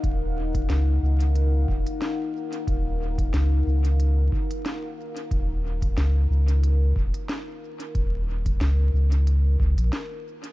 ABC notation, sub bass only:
X:1
M:4/4
L:1/16
Q:"Swing 16ths" 1/4=91
K:Ebm
V:1 name="Sub bass" clef=bass
E,,,4 D,,2 D,,4 E,,, z4 z | E,,,4 D,,2 D,,4 z6 | E,,,4 D,,2 D,,4 E,,, z4 z | E,,,4 D,,2 D,,4 D,, B,,, z4 |]